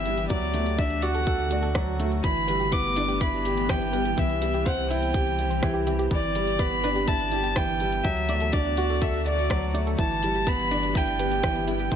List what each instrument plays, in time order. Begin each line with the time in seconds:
Already playing: analog synth bass G1, ambient pad E3 B3 G4, grand piano E3 G3 B3 D4 E4 G4, violin E5
0.06 grand piano G3, synth arpeggio sound E4, closed hi-hat
0.18 synth arpeggio sound G4, closed hi-hat
0.29 analog synth bass D2, ambient pad D3 A3 F#4, grand piano F#3, violin D5, synth arpeggio sound D5, kick, closed hi-hat
0.42 closed hi-hat
0.54 grand piano A3, closed hi-hat
0.66 closed hi-hat
0.78 grand piano D4, violin E5, kick, closed hi-hat
0.90 closed hi-hat
1.02 grand piano F#4, synth arpeggio sound D5, violin F#5, closed hi-hat
1.15 synth arpeggio sound A4, closed hi-hat
1.26 synth arpeggio sound F#4, grand piano A4, kick, closed hi-hat
1.39 closed hi-hat
1.50 synth arpeggio sound F#4, grand piano D5, closed hi-hat
1.62 synth arpeggio sound A4, closed hi-hat
1.75 grand piano F#3, synth arpeggio sound D5, kick, cross-stick, closed hi-hat
1.87 closed hi-hat
2.00 grand piano A3, closed hi-hat
2.12 closed hi-hat
2.23 analog synth bass G1, ambient pad E3 B3 G4, grand piano E3, violin B5, kick, closed hi-hat
2.36 closed hi-hat
2.48 grand piano G3, synth arpeggio sound B4, closed hi-hat
2.60 synth arpeggio sound G4, closed hi-hat
2.72 grand piano B3, synth arpeggio sound E4, violin D6, kick, closed hi-hat
2.84 closed hi-hat
2.96 grand piano D4, synth arpeggio sound E4, closed hi-hat
3.08 synth arpeggio sound G4, closed hi-hat
3.21 grand piano E4, synth arpeggio sound B4, violin B5, kick, closed hi-hat
3.33 closed hi-hat
3.45 grand piano G4, closed hi-hat
3.57 closed hi-hat
3.69 grand piano E3, violin G5, kick, cross-stick, closed hi-hat
3.82 closed hi-hat
3.93 grand piano G3, synth arpeggio sound B4, closed hi-hat
4.05 synth arpeggio sound G4, closed hi-hat
4.17 analog synth bass C2, ambient pad E3 C4, grand piano E3, synth arpeggio sound E4, violin E5, kick, closed hi-hat
4.30 closed hi-hat
4.42 grand piano G3, synth arpeggio sound E4, closed hi-hat
4.54 synth arpeggio sound G4, closed hi-hat
4.65 grand piano C4, synth arpeggio sound C5, violin F#5, kick, closed hi-hat
4.78 closed hi-hat
4.90 grand piano E4, violin G5, closed hi-hat
5.02 closed hi-hat
5.14 grand piano G4, kick, closed hi-hat
5.27 closed hi-hat
5.39 grand piano G4, closed hi-hat
5.50 synth arpeggio sound C5, closed hi-hat
5.62 grand piano E3, synth arpeggio sound G4, kick, cross-stick, closed hi-hat
5.74 synth arpeggio sound G4, closed hi-hat
5.87 grand piano E3, synth arpeggio sound G4, closed hi-hat
5.99 synth arpeggio sound G4, closed hi-hat
6.11 analog synth bass G1, grand piano E3, ambient pad E3 B3, synth arpeggio sound B4, violin D5, kick, closed hi-hat
6.23 closed hi-hat
6.35 grand piano G3, closed hi-hat
6.47 closed hi-hat
6.59 grand piano B3, violin B5, kick, closed hi-hat
6.72 closed hi-hat
6.84 grand piano D4, synth arpeggio sound B4, closed hi-hat
6.96 synth arpeggio sound G4, closed hi-hat
7.07 synth arpeggio sound E4, grand piano E4, violin A5, kick, closed hi-hat
7.19 closed hi-hat
7.32 synth arpeggio sound E4, grand piano G4, closed hi-hat
7.43 synth arpeggio sound G4, closed hi-hat
7.56 grand piano E3, synth arpeggio sound B4, violin G5, kick, cross-stick, closed hi-hat
7.68 closed hi-hat
7.80 grand piano G3, closed hi-hat
7.92 closed hi-hat
8.04 analog synth bass D2, ambient pad D3 A3 F#4, grand piano F#3, violin E5, kick, closed hi-hat
8.17 closed hi-hat
8.29 grand piano A3, synth arpeggio sound D5, closed hi-hat
8.40 synth arpeggio sound A4, closed hi-hat
8.53 grand piano D4, synth arpeggio sound F#4, violin D5, kick, closed hi-hat
8.65 closed hi-hat
8.77 grand piano F#4, synth arpeggio sound F#4, closed hi-hat
8.89 synth arpeggio sound A4, closed hi-hat
9.02 grand piano A4, synth arpeggio sound D5, violin E5, kick, closed hi-hat
9.14 closed hi-hat
9.25 violin D5, grand piano D5, closed hi-hat
9.39 closed hi-hat
9.50 grand piano F#3, kick, cross-stick, closed hi-hat
9.63 closed hi-hat
9.74 grand piano A3, synth arpeggio sound D5, closed hi-hat
9.87 synth arpeggio sound A4, closed hi-hat
9.98 analog synth bass G1, ambient pad E3 B3 G4, grand piano E3, synth arpeggio sound E4, violin A5, kick, closed hi-hat
10.11 closed hi-hat
10.23 grand piano G3, synth arpeggio sound E4, closed hi-hat
10.35 synth arpeggio sound G4, closed hi-hat
10.47 grand piano B3, synth arpeggio sound B4, violin B5, kick, closed hi-hat
10.59 closed hi-hat
10.71 grand piano D4, closed hi-hat
10.83 closed hi-hat
10.95 grand piano E4, violin G5, kick, closed hi-hat
11.07 closed hi-hat
11.19 grand piano G4, synth arpeggio sound B4, closed hi-hat
11.31 synth arpeggio sound G4, closed hi-hat
11.43 grand piano E3, synth arpeggio sound E4, kick, cross-stick, closed hi-hat
11.56 closed hi-hat
11.67 grand piano G3, synth arpeggio sound E4, violin G5, closed hi-hat
11.79 synth arpeggio sound G4, closed hi-hat
11.91 analog synth bass C2, ambient pad E3 C4, grand piano E3, synth arpeggio sound C5, kick, closed hi-hat